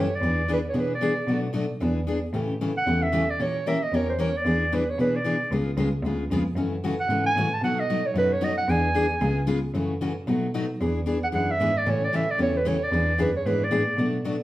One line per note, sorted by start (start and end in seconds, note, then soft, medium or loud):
0.00 0.18 F#2 medium
0.00 0.17 C#5 medium
0.16 0.51 D5 medium
0.21 0.64 E2 medium
0.21 0.41 E3 medium
0.21 0.41 B3 medium
0.21 0.41 D4 medium
0.21 0.41 G#4 medium
0.48 0.59 E3 medium
0.48 0.59 B3 medium
0.48 0.59 D4 medium
0.48 0.59 G#4 medium
0.53 0.59 B4 medium
0.69 0.81 C#5 medium
0.73 1.16 B2 medium
0.73 0.93 E3 medium
0.73 0.93 B3 medium
0.73 0.93 D4 medium
0.73 0.93 G#4 medium
0.80 0.93 B4 medium
0.95 1.42 D5 medium
1.01 1.12 E3 medium
1.01 1.12 B3 medium
1.01 1.12 D4 medium
1.01 1.12 G#4 loud
1.27 1.70 B2 medium
1.27 1.47 B2 medium
1.27 1.46 F#3 medium
1.27 1.47 A3 medium
1.27 1.47 D4 medium
1.27 1.47 F#4 medium
1.53 1.64 B2 medium
1.53 1.64 F#3 medium
1.53 1.64 A3 medium
1.53 1.64 D4 medium
1.53 1.65 F#4 medium
1.80 2.23 E2 medium
1.80 1.99 E3 medium
1.80 1.99 B3 medium
1.80 2.00 D4 medium
1.80 2.00 G#4 medium
2.07 2.17 E3 medium
2.07 2.18 B3 medium
2.07 2.18 D4 medium
2.07 2.18 G#4 medium
2.33 2.76 A2 medium
2.33 2.52 C#3 medium
2.33 2.52 E3 medium
2.33 2.52 A3 medium
2.33 2.52 C#4 medium
2.33 2.52 G4 medium
2.61 2.71 C#3 medium
2.61 2.71 E3 medium
2.61 2.71 A3 medium
2.61 2.71 C#4 medium
2.61 2.72 G4 medium
2.77 3.04 F#5 medium
2.86 3.29 E2 medium
2.86 3.05 C#3 medium
2.86 3.05 E3 medium
2.86 3.05 A3 medium
2.86 3.05 C#4 medium
2.86 3.05 G4 medium
3.03 3.32 E5 medium
3.12 3.23 C#3 medium
3.12 3.23 E3 medium
3.12 3.24 A3 medium
3.12 3.23 C#4 medium
3.12 3.24 G4 medium
3.30 3.43 D5 medium
3.39 3.82 A#2 medium
3.39 3.58 E3 medium
3.39 3.58 A#3 medium
3.39 3.58 C#4 medium
3.39 3.58 G4 medium
3.39 3.59 A#4 medium
3.39 3.69 C#5 medium
3.66 3.76 E3 medium
3.66 3.77 A#3 medium
3.66 3.77 C#4 medium
3.66 3.77 G4 medium
3.66 3.77 A#4 medium
3.66 3.85 E5 medium
3.83 3.96 D#5 medium
3.92 4.34 E2 medium
3.92 4.11 E3 medium
3.92 4.11 A#3 medium
3.92 4.12 C#4 medium
3.92 4.12 G4 medium
3.92 4.12 A#4 medium
3.92 4.09 C#5 medium
4.10 4.22 C5 medium
4.19 4.29 E3 medium
4.19 4.30 A#3 medium
4.19 4.29 C#4 medium
4.19 4.29 G4 medium
4.19 4.30 A#4 medium
4.19 4.39 C#5 medium
4.37 4.76 D5 medium
4.45 4.88 E2 medium
4.45 4.64 E3 medium
4.45 4.64 B3 medium
4.45 4.64 D4 medium
4.45 4.64 G#4 medium
4.72 4.82 E3 medium
4.72 4.82 B3 medium
4.72 4.82 D4 medium
4.72 4.83 G#4 medium
4.72 4.92 B4 medium
4.90 5.00 C#5 medium
4.98 5.41 B2 medium
4.98 5.17 E3 medium
4.98 5.17 B3 medium
4.98 5.17 D4 medium
4.98 5.18 G#4 medium
4.98 5.18 B4 medium
5.16 5.53 D5 medium
5.24 5.35 E3 medium
5.24 5.35 B3 medium
5.24 5.35 D4 medium
5.24 5.36 G#4 medium
5.51 5.72 C#2 medium
5.51 5.70 C#3 medium
5.51 5.70 G#3 medium
5.51 5.70 B3 medium
5.51 5.70 F4 medium
5.51 5.70 G#4 medium
5.77 6.00 C#2 medium
5.77 5.88 C#3 medium
5.77 5.88 G#3 medium
5.77 5.88 B3 medium
5.77 5.88 F4 medium
5.77 5.88 G#4 medium
6.02 6.26 D2 medium
6.02 6.23 C#3 medium
6.02 6.23 G#3 medium
6.02 6.23 B3 medium
6.02 6.23 F4 medium
6.02 6.23 G#4 medium
6.30 6.53 F2 medium
6.30 6.41 C#3 medium
6.30 6.41 G#3 medium
6.30 6.41 B3 medium
6.30 6.41 F4 medium
6.30 6.42 G#4 loud
6.55 6.98 F#2 medium
6.55 6.75 C#3 medium
6.55 6.75 E3 medium
6.55 6.76 A3 medium
6.55 6.76 C#4 medium
6.55 6.76 F#4 medium
6.84 6.94 C#3 medium
6.84 6.94 E3 medium
6.84 6.94 A3 medium
6.84 6.94 C#4 medium
6.84 6.94 F#4 medium
7.00 7.24 F#5 medium
7.08 7.32 G#2 medium
7.08 7.28 C#3 medium
7.08 7.29 E3 medium
7.08 7.28 A3 medium
7.08 7.29 C#4 medium
7.08 7.29 F#4 medium
7.27 7.55 G#5 medium
7.36 7.58 A2 medium
7.36 7.47 C#3 medium
7.36 7.47 E3 medium
7.36 7.47 A3 medium
7.36 7.48 C#4 medium
7.36 7.47 F#4 medium
7.54 7.64 A5 medium
7.61 8.04 B2 medium
7.61 7.82 B2 medium
7.61 7.82 F#3 medium
7.61 7.82 A3 medium
7.61 7.82 D#4 medium
7.61 7.82 F#4 medium
7.61 7.82 F#5 medium
7.80 8.08 D#5 medium
7.90 8.00 B2 medium
7.90 8.00 F#3 medium
7.90 8.00 A3 medium
7.90 8.00 D#4 medium
7.90 8.00 F#4 medium
8.06 8.17 C#5 medium
8.14 8.57 F#2 medium
8.14 8.34 B2 medium
8.14 8.34 F#3 medium
8.14 8.34 A3 medium
8.14 8.34 D#4 medium
8.14 8.35 F#4 medium
8.18 8.35 B4 medium
8.33 8.46 C#5 medium
8.41 8.52 B2 medium
8.41 8.52 F#3 medium
8.41 8.52 A3 medium
8.41 8.52 D#4 medium
8.41 8.52 F#4 medium
8.41 8.57 D#5 medium
8.58 8.72 F#5 medium
8.68 9.11 E2 medium
8.68 8.87 E3 medium
8.68 8.87 B3 medium
8.68 8.88 D4 medium
8.68 8.88 G#4 medium
8.68 9.49 G#5 medium
8.94 9.05 E3 medium
8.94 9.05 B3 medium
8.94 9.06 D4 medium
8.94 9.06 G#4 loud
9.21 9.64 C#2 medium
9.21 9.40 C#3 medium
9.21 9.40 G#3 medium
9.21 9.40 B3 medium
9.21 9.40 F4 medium
9.21 9.40 G#4 medium
9.47 9.58 C#3 medium
9.47 9.58 G#3 medium
9.47 9.58 B3 medium
9.47 9.58 F4 loud
9.47 9.58 G#4 loud
9.74 10.17 F#2 medium
9.74 9.93 C#3 medium
9.74 9.93 E3 medium
9.74 9.93 A3 medium
9.74 9.93 C#4 medium
9.74 9.93 F#4 medium
10.01 10.11 C#3 medium
10.01 10.11 E3 medium
10.01 10.12 A3 medium
10.01 10.12 C#4 medium
10.01 10.12 F#4 medium
10.27 10.70 B2 medium
10.27 10.46 B2 medium
10.27 10.46 F#3 medium
10.27 10.46 A3 medium
10.27 10.46 D#4 medium
10.27 10.47 F#4 medium
10.54 10.64 B2 medium
10.54 10.65 F#3 medium
10.54 10.65 A3 medium
10.54 10.65 D#4 medium
10.54 10.65 F#4 medium
10.80 11.23 E2 medium
10.80 10.99 E3 medium
10.80 11.00 B3 medium
10.80 11.00 D4 medium
10.80 10.99 G#4 medium
11.06 11.17 E3 medium
11.06 11.17 B3 medium
11.06 11.17 D4 medium
11.06 11.17 G#4 medium
11.24 11.29 F#5 medium
11.32 11.57 F#2 medium
11.32 11.51 E3 medium
11.32 11.51 B3 medium
11.32 11.52 D4 medium
11.32 11.52 G#4 medium
11.32 11.53 F#5 medium
11.51 11.79 E5 loud
11.60 11.83 G#2 medium
11.60 11.70 E3 medium
11.60 11.71 B3 medium
11.60 11.71 D4 medium
11.60 11.71 G#4 medium
11.78 11.92 D5 medium
11.86 12.29 A2 medium
11.86 12.05 C#3 medium
11.86 12.05 E3 medium
11.86 12.05 A3 medium
11.86 12.05 C#4 medium
11.86 12.05 G4 medium
11.90 12.06 C#5 medium
12.05 12.17 D5 medium
12.13 12.23 C#3 medium
12.13 12.23 E3 medium
12.13 12.24 A3 medium
12.13 12.24 C#4 medium
12.13 12.24 G4 medium
12.13 12.32 E5 medium
12.31 12.41 D5 medium
12.38 12.81 E2 medium
12.38 12.57 C#3 medium
12.38 12.58 E3 medium
12.38 12.57 A3 medium
12.38 12.58 C#4 medium
12.38 12.58 G4 medium
12.38 12.59 C#5 medium
12.58 12.69 B4 medium
12.65 12.76 C#3 medium
12.65 12.76 E3 medium
12.65 12.76 A3 loud
12.65 12.76 C#4 medium
12.65 12.77 G4 loud
12.65 12.85 C#5 medium
12.84 13.20 D5 medium
12.92 13.13 E2 medium
12.92 13.11 E3 medium
12.92 13.11 B3 medium
12.92 13.11 D4 medium
12.92 13.11 G#4 medium
13.18 13.41 F#2 medium
13.18 13.29 E3 medium
13.18 13.29 B3 medium
13.18 13.29 D4 loud
13.18 13.30 G#4 medium
13.18 13.35 B4 medium
13.36 13.48 C#5 medium
13.46 13.68 G#2 medium
13.46 13.64 E3 medium
13.46 13.64 B3 medium
13.46 13.64 D4 medium
13.46 13.64 G#4 medium
13.46 13.66 B4 medium
13.64 14.15 D5 medium
13.71 13.94 A2 medium
13.71 13.82 E3 medium
13.71 13.82 B3 medium
13.71 13.82 D4 medium
13.71 13.82 G#4 loud
13.97 14.40 B2 medium
13.97 14.17 B2 medium
13.97 14.17 F#3 medium
13.97 14.17 A3 medium
13.97 14.17 D4 medium
13.97 14.17 F#4 medium
14.25 14.35 B2 medium
14.25 14.35 F#3 medium
14.25 14.35 A3 medium
14.25 14.35 D4 medium
14.25 14.35 F#4 medium